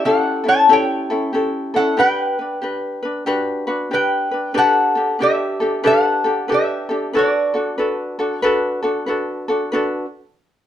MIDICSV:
0, 0, Header, 1, 3, 480
1, 0, Start_track
1, 0, Key_signature, 2, "major"
1, 0, Tempo, 644468
1, 1476, Time_signature, 4, 2, 24, 8
1, 7946, End_track
2, 0, Start_track
2, 0, Title_t, "Resonator guitar played with a steel bar"
2, 0, Program_c, 0, 25
2, 40, Note_on_c, 0, 78, 88
2, 44, Note_on_c, 0, 69, 70
2, 321, Note_off_c, 0, 78, 0
2, 324, Note_off_c, 0, 69, 0
2, 361, Note_on_c, 0, 73, 80
2, 364, Note_on_c, 0, 81, 102
2, 514, Note_off_c, 0, 73, 0
2, 531, Note_off_c, 0, 81, 0
2, 540, Note_on_c, 0, 73, 68
2, 543, Note_on_c, 0, 79, 90
2, 979, Note_off_c, 0, 73, 0
2, 979, Note_off_c, 0, 79, 0
2, 1312, Note_on_c, 0, 78, 94
2, 1320, Note_on_c, 0, 69, 71
2, 1474, Note_off_c, 0, 69, 0
2, 1486, Note_on_c, 0, 79, 102
2, 1487, Note_off_c, 0, 78, 0
2, 1494, Note_on_c, 0, 71, 84
2, 2412, Note_off_c, 0, 79, 0
2, 2416, Note_off_c, 0, 71, 0
2, 2934, Note_on_c, 0, 71, 72
2, 2938, Note_on_c, 0, 79, 89
2, 3377, Note_off_c, 0, 71, 0
2, 3408, Note_on_c, 0, 69, 84
2, 3413, Note_off_c, 0, 79, 0
2, 3416, Note_on_c, 0, 78, 105
2, 3854, Note_off_c, 0, 69, 0
2, 3887, Note_on_c, 0, 67, 71
2, 3898, Note_on_c, 0, 76, 95
2, 3901, Note_off_c, 0, 78, 0
2, 4333, Note_off_c, 0, 67, 0
2, 4362, Note_on_c, 0, 69, 78
2, 4374, Note_on_c, 0, 78, 103
2, 4382, Note_off_c, 0, 76, 0
2, 4811, Note_off_c, 0, 69, 0
2, 4856, Note_on_c, 0, 67, 65
2, 4860, Note_off_c, 0, 78, 0
2, 4872, Note_on_c, 0, 76, 81
2, 5298, Note_off_c, 0, 67, 0
2, 5336, Note_on_c, 0, 66, 65
2, 5349, Note_off_c, 0, 76, 0
2, 5352, Note_on_c, 0, 74, 80
2, 6238, Note_off_c, 0, 74, 0
2, 6238, Note_on_c, 0, 73, 80
2, 6738, Note_off_c, 0, 66, 0
2, 6745, Note_off_c, 0, 73, 0
2, 7946, End_track
3, 0, Start_track
3, 0, Title_t, "Ukulele"
3, 0, Program_c, 1, 24
3, 37, Note_on_c, 1, 67, 62
3, 43, Note_on_c, 1, 61, 58
3, 46, Note_on_c, 1, 64, 63
3, 52, Note_on_c, 1, 69, 64
3, 316, Note_off_c, 1, 69, 0
3, 325, Note_on_c, 1, 69, 52
3, 328, Note_off_c, 1, 64, 0
3, 337, Note_off_c, 1, 61, 0
3, 337, Note_on_c, 1, 64, 44
3, 341, Note_off_c, 1, 67, 0
3, 346, Note_on_c, 1, 61, 42
3, 505, Note_off_c, 1, 61, 0
3, 508, Note_off_c, 1, 69, 0
3, 512, Note_off_c, 1, 64, 0
3, 514, Note_on_c, 1, 61, 69
3, 515, Note_on_c, 1, 67, 76
3, 521, Note_on_c, 1, 64, 85
3, 522, Note_on_c, 1, 69, 86
3, 810, Note_off_c, 1, 69, 0
3, 816, Note_off_c, 1, 64, 0
3, 819, Note_on_c, 1, 69, 56
3, 820, Note_off_c, 1, 61, 0
3, 820, Note_off_c, 1, 67, 0
3, 825, Note_on_c, 1, 64, 55
3, 835, Note_on_c, 1, 61, 45
3, 988, Note_off_c, 1, 61, 0
3, 988, Note_on_c, 1, 67, 55
3, 992, Note_off_c, 1, 64, 0
3, 995, Note_off_c, 1, 69, 0
3, 997, Note_on_c, 1, 61, 57
3, 1001, Note_on_c, 1, 64, 59
3, 1003, Note_on_c, 1, 69, 67
3, 1286, Note_off_c, 1, 69, 0
3, 1295, Note_on_c, 1, 69, 54
3, 1296, Note_off_c, 1, 64, 0
3, 1297, Note_off_c, 1, 67, 0
3, 1302, Note_off_c, 1, 61, 0
3, 1305, Note_on_c, 1, 64, 50
3, 1311, Note_on_c, 1, 61, 41
3, 1466, Note_off_c, 1, 61, 0
3, 1466, Note_on_c, 1, 67, 72
3, 1469, Note_on_c, 1, 62, 73
3, 1473, Note_off_c, 1, 69, 0
3, 1478, Note_off_c, 1, 64, 0
3, 1479, Note_on_c, 1, 71, 81
3, 1769, Note_off_c, 1, 71, 0
3, 1775, Note_off_c, 1, 67, 0
3, 1778, Note_off_c, 1, 62, 0
3, 1778, Note_on_c, 1, 71, 51
3, 1794, Note_on_c, 1, 62, 41
3, 1945, Note_off_c, 1, 71, 0
3, 1948, Note_off_c, 1, 62, 0
3, 1948, Note_on_c, 1, 67, 56
3, 1957, Note_on_c, 1, 62, 59
3, 1963, Note_on_c, 1, 71, 67
3, 2245, Note_off_c, 1, 71, 0
3, 2250, Note_off_c, 1, 67, 0
3, 2253, Note_on_c, 1, 71, 54
3, 2262, Note_off_c, 1, 62, 0
3, 2272, Note_on_c, 1, 62, 54
3, 2425, Note_off_c, 1, 62, 0
3, 2426, Note_off_c, 1, 71, 0
3, 2429, Note_on_c, 1, 67, 84
3, 2434, Note_on_c, 1, 62, 90
3, 2436, Note_on_c, 1, 66, 85
3, 2438, Note_on_c, 1, 71, 107
3, 2724, Note_off_c, 1, 71, 0
3, 2730, Note_off_c, 1, 66, 0
3, 2733, Note_on_c, 1, 71, 61
3, 2738, Note_off_c, 1, 67, 0
3, 2739, Note_on_c, 1, 66, 55
3, 2740, Note_off_c, 1, 62, 0
3, 2749, Note_on_c, 1, 62, 53
3, 2904, Note_off_c, 1, 62, 0
3, 2911, Note_on_c, 1, 67, 58
3, 2913, Note_off_c, 1, 71, 0
3, 2913, Note_on_c, 1, 62, 63
3, 2916, Note_off_c, 1, 66, 0
3, 2927, Note_on_c, 1, 71, 66
3, 3204, Note_off_c, 1, 71, 0
3, 3210, Note_off_c, 1, 67, 0
3, 3213, Note_on_c, 1, 71, 52
3, 3220, Note_off_c, 1, 62, 0
3, 3229, Note_on_c, 1, 62, 40
3, 3373, Note_off_c, 1, 71, 0
3, 3375, Note_off_c, 1, 62, 0
3, 3382, Note_on_c, 1, 71, 74
3, 3384, Note_on_c, 1, 62, 80
3, 3387, Note_on_c, 1, 67, 81
3, 3390, Note_on_c, 1, 69, 78
3, 3679, Note_off_c, 1, 69, 0
3, 3688, Note_on_c, 1, 69, 50
3, 3691, Note_off_c, 1, 67, 0
3, 3695, Note_off_c, 1, 71, 0
3, 3696, Note_off_c, 1, 62, 0
3, 3700, Note_on_c, 1, 67, 51
3, 3704, Note_on_c, 1, 62, 39
3, 3862, Note_off_c, 1, 67, 0
3, 3865, Note_off_c, 1, 62, 0
3, 3865, Note_on_c, 1, 71, 55
3, 3871, Note_off_c, 1, 69, 0
3, 3874, Note_on_c, 1, 62, 57
3, 3877, Note_on_c, 1, 67, 66
3, 3880, Note_on_c, 1, 69, 67
3, 4163, Note_off_c, 1, 69, 0
3, 4172, Note_off_c, 1, 67, 0
3, 4172, Note_on_c, 1, 69, 55
3, 4176, Note_off_c, 1, 71, 0
3, 4179, Note_off_c, 1, 62, 0
3, 4181, Note_on_c, 1, 67, 54
3, 4188, Note_on_c, 1, 62, 49
3, 4338, Note_off_c, 1, 62, 0
3, 4340, Note_off_c, 1, 67, 0
3, 4346, Note_off_c, 1, 69, 0
3, 4346, Note_on_c, 1, 71, 79
3, 4347, Note_on_c, 1, 62, 81
3, 4349, Note_on_c, 1, 67, 83
3, 4355, Note_on_c, 1, 69, 85
3, 4640, Note_off_c, 1, 69, 0
3, 4649, Note_on_c, 1, 69, 54
3, 4651, Note_off_c, 1, 67, 0
3, 4653, Note_off_c, 1, 62, 0
3, 4657, Note_off_c, 1, 71, 0
3, 4660, Note_on_c, 1, 67, 54
3, 4662, Note_on_c, 1, 62, 43
3, 4823, Note_off_c, 1, 62, 0
3, 4824, Note_off_c, 1, 67, 0
3, 4827, Note_on_c, 1, 71, 54
3, 4828, Note_off_c, 1, 69, 0
3, 4832, Note_on_c, 1, 62, 61
3, 4836, Note_on_c, 1, 67, 62
3, 4837, Note_on_c, 1, 69, 66
3, 5122, Note_off_c, 1, 69, 0
3, 5131, Note_on_c, 1, 69, 51
3, 5134, Note_off_c, 1, 67, 0
3, 5137, Note_off_c, 1, 62, 0
3, 5137, Note_off_c, 1, 71, 0
3, 5143, Note_on_c, 1, 67, 49
3, 5146, Note_on_c, 1, 62, 48
3, 5310, Note_off_c, 1, 62, 0
3, 5310, Note_off_c, 1, 69, 0
3, 5313, Note_on_c, 1, 71, 70
3, 5318, Note_off_c, 1, 67, 0
3, 5319, Note_on_c, 1, 62, 76
3, 5323, Note_on_c, 1, 66, 73
3, 5324, Note_on_c, 1, 69, 89
3, 5605, Note_off_c, 1, 69, 0
3, 5611, Note_off_c, 1, 71, 0
3, 5614, Note_off_c, 1, 66, 0
3, 5614, Note_on_c, 1, 69, 51
3, 5623, Note_off_c, 1, 62, 0
3, 5623, Note_on_c, 1, 66, 49
3, 5633, Note_on_c, 1, 62, 44
3, 5786, Note_off_c, 1, 62, 0
3, 5790, Note_off_c, 1, 69, 0
3, 5793, Note_on_c, 1, 71, 55
3, 5795, Note_off_c, 1, 66, 0
3, 5795, Note_on_c, 1, 62, 55
3, 5803, Note_on_c, 1, 66, 57
3, 5804, Note_on_c, 1, 69, 65
3, 6089, Note_off_c, 1, 69, 0
3, 6095, Note_off_c, 1, 71, 0
3, 6096, Note_off_c, 1, 66, 0
3, 6098, Note_on_c, 1, 69, 59
3, 6102, Note_off_c, 1, 62, 0
3, 6105, Note_on_c, 1, 66, 54
3, 6110, Note_on_c, 1, 62, 47
3, 6271, Note_off_c, 1, 69, 0
3, 6272, Note_off_c, 1, 62, 0
3, 6273, Note_off_c, 1, 66, 0
3, 6274, Note_on_c, 1, 71, 88
3, 6280, Note_on_c, 1, 62, 85
3, 6282, Note_on_c, 1, 66, 88
3, 6288, Note_on_c, 1, 69, 94
3, 6564, Note_off_c, 1, 69, 0
3, 6570, Note_off_c, 1, 71, 0
3, 6573, Note_off_c, 1, 66, 0
3, 6573, Note_on_c, 1, 69, 58
3, 6579, Note_off_c, 1, 62, 0
3, 6582, Note_on_c, 1, 66, 60
3, 6588, Note_on_c, 1, 62, 51
3, 6747, Note_off_c, 1, 69, 0
3, 6749, Note_off_c, 1, 62, 0
3, 6750, Note_on_c, 1, 71, 61
3, 6756, Note_off_c, 1, 66, 0
3, 6758, Note_on_c, 1, 62, 61
3, 6765, Note_on_c, 1, 66, 66
3, 6769, Note_on_c, 1, 69, 65
3, 7053, Note_off_c, 1, 69, 0
3, 7059, Note_off_c, 1, 71, 0
3, 7062, Note_off_c, 1, 66, 0
3, 7062, Note_on_c, 1, 69, 56
3, 7063, Note_off_c, 1, 62, 0
3, 7071, Note_on_c, 1, 66, 60
3, 7074, Note_on_c, 1, 62, 49
3, 7235, Note_off_c, 1, 69, 0
3, 7238, Note_on_c, 1, 71, 83
3, 7239, Note_off_c, 1, 62, 0
3, 7242, Note_off_c, 1, 66, 0
3, 7248, Note_on_c, 1, 62, 76
3, 7251, Note_on_c, 1, 66, 82
3, 7258, Note_on_c, 1, 69, 81
3, 7482, Note_off_c, 1, 71, 0
3, 7487, Note_off_c, 1, 62, 0
3, 7488, Note_off_c, 1, 66, 0
3, 7492, Note_off_c, 1, 69, 0
3, 7946, End_track
0, 0, End_of_file